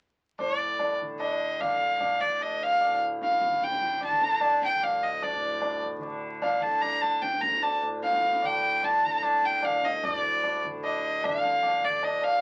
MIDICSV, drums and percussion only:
0, 0, Header, 1, 2, 480
1, 0, Start_track
1, 0, Tempo, 401338
1, 466, Time_signature, 3, 2, 24, 8
1, 14845, End_track
2, 0, Start_track
2, 0, Title_t, "Tabla"
2, 464, Note_on_c, 9, 60, 81
2, 464, Note_on_c, 9, 64, 75
2, 584, Note_off_c, 9, 60, 0
2, 584, Note_off_c, 9, 64, 0
2, 950, Note_on_c, 9, 60, 68
2, 950, Note_on_c, 9, 64, 63
2, 1069, Note_off_c, 9, 60, 0
2, 1069, Note_off_c, 9, 64, 0
2, 1203, Note_on_c, 9, 64, 46
2, 1322, Note_off_c, 9, 64, 0
2, 1436, Note_on_c, 9, 60, 66
2, 1555, Note_off_c, 9, 60, 0
2, 1919, Note_on_c, 9, 60, 70
2, 1919, Note_on_c, 9, 64, 61
2, 2039, Note_off_c, 9, 60, 0
2, 2039, Note_off_c, 9, 64, 0
2, 2396, Note_on_c, 9, 60, 71
2, 2396, Note_on_c, 9, 64, 62
2, 2515, Note_off_c, 9, 60, 0
2, 2515, Note_off_c, 9, 64, 0
2, 2633, Note_on_c, 9, 64, 45
2, 2752, Note_off_c, 9, 64, 0
2, 2881, Note_on_c, 9, 60, 62
2, 3001, Note_off_c, 9, 60, 0
2, 3359, Note_on_c, 9, 60, 67
2, 3479, Note_off_c, 9, 60, 0
2, 3845, Note_on_c, 9, 62, 77
2, 3964, Note_off_c, 9, 62, 0
2, 3964, Note_on_c, 9, 62, 52
2, 4082, Note_on_c, 9, 37, 57
2, 4083, Note_off_c, 9, 62, 0
2, 4201, Note_off_c, 9, 37, 0
2, 4203, Note_on_c, 9, 62, 52
2, 4322, Note_off_c, 9, 62, 0
2, 4322, Note_on_c, 9, 62, 68
2, 4442, Note_off_c, 9, 62, 0
2, 4446, Note_on_c, 9, 62, 51
2, 4564, Note_on_c, 9, 37, 53
2, 4566, Note_off_c, 9, 62, 0
2, 4672, Note_on_c, 9, 62, 49
2, 4683, Note_off_c, 9, 37, 0
2, 4792, Note_off_c, 9, 62, 0
2, 4792, Note_on_c, 9, 60, 66
2, 4792, Note_on_c, 9, 64, 60
2, 4912, Note_off_c, 9, 60, 0
2, 4912, Note_off_c, 9, 64, 0
2, 5036, Note_on_c, 9, 62, 56
2, 5155, Note_off_c, 9, 62, 0
2, 5273, Note_on_c, 9, 60, 72
2, 5273, Note_on_c, 9, 64, 66
2, 5393, Note_off_c, 9, 60, 0
2, 5393, Note_off_c, 9, 64, 0
2, 5523, Note_on_c, 9, 62, 54
2, 5642, Note_off_c, 9, 62, 0
2, 5766, Note_on_c, 9, 60, 64
2, 5766, Note_on_c, 9, 64, 63
2, 5886, Note_off_c, 9, 60, 0
2, 5886, Note_off_c, 9, 64, 0
2, 6011, Note_on_c, 9, 64, 47
2, 6131, Note_off_c, 9, 64, 0
2, 6248, Note_on_c, 9, 60, 91
2, 6248, Note_on_c, 9, 64, 80
2, 6368, Note_off_c, 9, 60, 0
2, 6368, Note_off_c, 9, 64, 0
2, 6717, Note_on_c, 9, 60, 73
2, 6717, Note_on_c, 9, 64, 65
2, 6836, Note_off_c, 9, 60, 0
2, 6836, Note_off_c, 9, 64, 0
2, 6961, Note_on_c, 9, 64, 49
2, 7081, Note_off_c, 9, 64, 0
2, 7202, Note_on_c, 9, 60, 67
2, 7321, Note_off_c, 9, 60, 0
2, 7678, Note_on_c, 9, 60, 70
2, 7678, Note_on_c, 9, 64, 60
2, 7798, Note_off_c, 9, 60, 0
2, 7798, Note_off_c, 9, 64, 0
2, 7928, Note_on_c, 9, 64, 55
2, 8047, Note_off_c, 9, 64, 0
2, 8162, Note_on_c, 9, 60, 74
2, 8162, Note_on_c, 9, 64, 67
2, 8281, Note_off_c, 9, 60, 0
2, 8281, Note_off_c, 9, 64, 0
2, 8404, Note_on_c, 9, 64, 51
2, 8523, Note_off_c, 9, 64, 0
2, 8637, Note_on_c, 9, 62, 64
2, 8756, Note_off_c, 9, 62, 0
2, 8760, Note_on_c, 9, 62, 53
2, 8879, Note_off_c, 9, 62, 0
2, 8885, Note_on_c, 9, 37, 57
2, 9004, Note_off_c, 9, 37, 0
2, 9006, Note_on_c, 9, 62, 50
2, 9124, Note_on_c, 9, 60, 70
2, 9126, Note_off_c, 9, 62, 0
2, 9243, Note_off_c, 9, 60, 0
2, 9363, Note_on_c, 9, 60, 62
2, 9483, Note_off_c, 9, 60, 0
2, 9599, Note_on_c, 9, 62, 72
2, 9719, Note_off_c, 9, 62, 0
2, 9720, Note_on_c, 9, 62, 56
2, 9834, Note_on_c, 9, 37, 58
2, 9839, Note_off_c, 9, 62, 0
2, 9953, Note_off_c, 9, 37, 0
2, 9963, Note_on_c, 9, 62, 55
2, 10075, Note_on_c, 9, 60, 70
2, 10082, Note_off_c, 9, 62, 0
2, 10195, Note_off_c, 9, 60, 0
2, 10555, Note_on_c, 9, 60, 67
2, 10555, Note_on_c, 9, 64, 67
2, 10675, Note_off_c, 9, 60, 0
2, 10675, Note_off_c, 9, 64, 0
2, 11037, Note_on_c, 9, 60, 74
2, 11037, Note_on_c, 9, 64, 66
2, 11157, Note_off_c, 9, 60, 0
2, 11157, Note_off_c, 9, 64, 0
2, 11275, Note_on_c, 9, 64, 51
2, 11395, Note_off_c, 9, 64, 0
2, 11514, Note_on_c, 9, 60, 68
2, 11514, Note_on_c, 9, 64, 60
2, 11633, Note_off_c, 9, 60, 0
2, 11633, Note_off_c, 9, 64, 0
2, 11759, Note_on_c, 9, 62, 53
2, 11878, Note_off_c, 9, 62, 0
2, 12001, Note_on_c, 9, 60, 93
2, 12001, Note_on_c, 9, 64, 83
2, 12121, Note_off_c, 9, 60, 0
2, 12121, Note_off_c, 9, 64, 0
2, 12482, Note_on_c, 9, 60, 78
2, 12482, Note_on_c, 9, 64, 68
2, 12602, Note_off_c, 9, 60, 0
2, 12602, Note_off_c, 9, 64, 0
2, 12723, Note_on_c, 9, 64, 48
2, 12843, Note_off_c, 9, 64, 0
2, 12962, Note_on_c, 9, 60, 72
2, 13081, Note_off_c, 9, 60, 0
2, 13442, Note_on_c, 9, 60, 75
2, 13442, Note_on_c, 9, 64, 64
2, 13561, Note_off_c, 9, 60, 0
2, 13561, Note_off_c, 9, 64, 0
2, 13679, Note_on_c, 9, 64, 50
2, 13799, Note_off_c, 9, 64, 0
2, 13906, Note_on_c, 9, 60, 77
2, 13906, Note_on_c, 9, 64, 72
2, 14025, Note_off_c, 9, 60, 0
2, 14025, Note_off_c, 9, 64, 0
2, 14147, Note_on_c, 9, 64, 52
2, 14266, Note_off_c, 9, 64, 0
2, 14386, Note_on_c, 9, 60, 72
2, 14506, Note_off_c, 9, 60, 0
2, 14618, Note_on_c, 9, 60, 54
2, 14738, Note_off_c, 9, 60, 0
2, 14845, End_track
0, 0, End_of_file